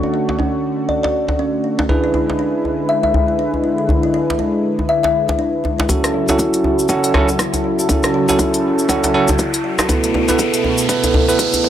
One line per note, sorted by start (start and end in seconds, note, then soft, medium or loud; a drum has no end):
0.00 1.85 D3 medium
0.00 1.85 A3 medium
0.00 1.87 D4 medium
0.00 0.12 D4 loud
0.00 1.85 F#4 medium
0.00 1.87 F#4 medium
0.00 1.87 A4 medium
0.00 1.87 C#5 medium
0.00 1.85 C#6 medium
0.00 djembe tone medium
0.14 0.27 D4 loud
0.29 djembe slap medium
0.39 0.53 C#4 medium
0.39 djembe tone medium
0.89 1.02 D5 loud
0.89 djembe tone medium
1.03 1.09 D5 medium
1.03 djembe slap medium
1.28 1.34 D4 medium
1.28 djembe slap medium
1.28 djembe tone medium
1.39 1.53 C#4 loud
1.64 1.72 D4 medium
1.79 1.89 D4 medium
1.79 djembe slap loud
1.79 djembe tone medium
1.89 5.85 D3 medium
1.89 5.85 G#3 medium
1.89 5.87 D4 medium
1.89 5.85 E4 medium
1.89 5.87 E4 medium
1.89 1.97 E4 medium
1.89 5.87 G#4 medium
1.89 5.85 B4 medium
1.89 5.87 B4 medium
1.89 djembe bass medium
2.04 2.13 E4 loud
2.14 2.27 E4 medium
2.14 djembe tone medium
2.30 djembe slap medium
2.39 2.53 D4 loud
2.65 djembe tone medium
2.89 3.02 E5 medium
3.03 3.09 E5 loud
3.03 djembe tone medium
3.14 djembe bass loud
3.28 3.34 E4 medium
3.39 3.53 D4 loud
3.54 djembe tone medium
3.64 3.72 E4 medium
3.78 3.88 E4 medium
3.89 3.97 E4 medium
3.89 djembe tone medium
3.89 djembe bass medium
4.03 4.13 E4 loud
4.14 4.27 E4 loud
4.30 djembe slap medium
4.39 4.53 D4 loud
4.39 djembe tone medium
4.79 djembe tone medium
4.89 5.02 E5 medium
5.03 5.09 E5 medium
5.03 djembe slap medium
5.28 5.34 E4 medium
5.28 djembe slap medium
5.28 djembe tone medium
5.39 5.53 D4 loud
5.64 5.72 E4 medium
5.64 djembe tone medium
5.78 5.89 E4 medium
5.78 djembe slap loud
5.89 9.85 C#3 medium
5.89 9.85 F#3 medium
5.89 6.25 C#4 medium
5.89 6.25 E4 medium
5.89 11.69 E4 medium
5.89 5.97 F#4 medium
5.89 6.25 F#4 medium
5.89 6.25 A4 medium
5.89 11.69 A4 medium
5.89 kick loud
5.89 closed hi-hat medium
5.89 mid tom soft
5.89 riser medium
5.89 djembe bass medium
5.89 cabasa medium
6.04 6.13 F#4 loud
6.04 cross-stick medium
6.04 closed hi-hat soft
6.04 cabasa soft
6.14 6.27 F#4 loud
6.28 6.87 C#4 medium
6.28 6.87 E4 medium
6.28 6.87 F#4 medium
6.28 6.87 A4 medium
6.28 djembe slap loud
6.28 djembe tone medium
6.28 cabasa medium
6.39 6.53 E4 loud
6.39 kick loud
6.39 closed hi-hat medium
6.39 mid tom soft
6.39 cabasa medium
6.53 closed hi-hat soft
6.53 cabasa soft
6.64 djembe tone loud
6.79 cabasa medium
6.88 7.12 C#4 medium
6.88 7.12 E4 medium
6.88 7.12 F#4 medium
6.88 7.12 A4 loud
6.88 7.02 F#5 loud
6.88 kick loud
6.88 closed hi-hat medium
6.88 mid tom soft
6.88 cabasa medium
7.03 7.09 F#5 loud
7.03 closed hi-hat soft
7.03 cabasa soft
7.14 7.28 C#4 medium
7.14 7.28 E4 medium
7.14 7.28 F#4 medium
7.14 7.28 A4 loud
7.14 cross-stick medium
7.14 djembe tone medium
7.14 djembe bass loud
7.28 7.34 F#4 medium
7.28 cabasa medium
7.39 7.53 E4 loud
7.39 kick loud
7.39 cross-stick medium
7.39 closed hi-hat medium
7.39 mid tom medium
7.39 cabasa medium
7.54 closed hi-hat soft
7.54 djembe tone medium
7.54 cabasa soft
7.64 7.72 F#4 medium
7.79 7.88 F#4 medium
7.79 cabasa medium
7.89 8.25 C#4 medium
7.89 8.25 E4 medium
7.89 8.25 F#4 medium
7.89 7.97 F#4 medium
7.89 8.25 A4 medium
7.89 kick loud
7.89 closed hi-hat medium
7.89 mid tom medium
7.89 djembe bass loud
7.89 cabasa medium
8.03 8.13 F#4 loud
8.03 cross-stick medium
8.03 closed hi-hat soft
8.03 djembe tone medium
8.03 cabasa soft
8.14 8.27 F#4 loud
8.29 8.87 C#4 medium
8.29 8.87 E4 medium
8.29 8.87 F#4 medium
8.29 8.87 A4 medium
8.29 djembe slap medium
8.29 cabasa medium
8.39 8.53 E4 loud
8.39 kick loud
8.39 closed hi-hat medium
8.39 mid tom medium
8.39 djembe tone loud
8.39 cabasa medium
8.54 closed hi-hat soft
8.54 cabasa soft
8.79 cabasa medium
8.89 9.12 C#4 medium
8.89 9.12 E4 medium
8.89 9.12 F#4 medium
8.89 9.12 A4 medium
8.89 9.02 F#5 loud
8.89 kick loud
8.89 closed hi-hat medium
8.89 mid tom medium
8.89 djembe tone medium
8.89 cabasa medium
9.03 9.09 F#5 loud
9.03 closed hi-hat soft
9.03 djembe slap loud
9.03 cabasa soft
9.14 9.28 C#4 medium
9.14 9.28 E4 medium
9.14 9.28 F#4 medium
9.14 9.28 A4 loud
9.28 9.34 F#4 medium
9.28 djembe slap medium
9.28 djembe tone loud
9.28 cabasa medium
9.39 9.53 E4 loud
9.39 kick loud
9.39 closed hi-hat medium
9.39 mid tom medium
9.39 cabasa medium
9.53 closed hi-hat soft
9.53 cabasa soft
9.64 9.72 F#4 medium
9.78 9.89 F#4 medium
9.78 cross-stick loud
9.78 djembe slap loud
9.78 djembe tone medium
9.78 cabasa medium
9.89 11.69 B2 medium
9.89 11.69 A3 medium
9.89 10.25 B3 medium
9.89 10.25 E4 medium
9.89 10.25 A4 medium
9.89 9.97 A4 medium
9.89 10.25 B4 medium
9.89 kick loud
9.89 closed hi-hat medium
9.89 mid tom medium
9.89 djembe bass medium
9.89 cabasa medium
10.04 10.13 A4 medium
10.04 closed hi-hat soft
10.04 cabasa soft
10.14 10.27 A4 loud
10.14 mid tom medium
10.14 djembe tone medium
10.28 10.87 B3 medium
10.28 10.87 E4 medium
10.28 10.87 A4 medium
10.28 10.87 B4 medium
10.28 djembe slap medium
10.28 cabasa medium
10.39 10.53 G#4 loud
10.39 kick loud
10.39 closed hi-hat medium
10.39 mid tom medium
10.39 cabasa medium
10.53 closed hi-hat soft
10.53 cabasa soft
10.64 mid tom medium
10.64 djembe tone medium
10.78 cabasa medium
10.89 11.25 B3 medium
10.89 11.25 E4 medium
10.89 11.25 A4 medium
10.89 10.97 A4 medium
10.89 11.25 B4 medium
10.89 kick loud
10.89 closed hi-hat medium
10.89 mid tom medium
10.89 cabasa medium
11.04 11.13 A4 medium
11.04 closed hi-hat soft
11.04 djembe tone loud
11.04 cabasa soft
11.14 11.27 A4 medium
11.14 mid tom medium
11.14 djembe bass medium
11.28 11.69 B3 medium
11.28 11.69 E4 medium
11.28 11.69 A4 medium
11.28 11.69 B4 medium
11.28 cabasa medium
11.39 11.53 G#4 loud
11.39 kick loud
11.39 closed hi-hat medium
11.39 mid tom medium
11.39 cabasa medium
11.53 closed hi-hat soft
11.53 djembe tone medium
11.53 cabasa soft
11.64 mid tom medium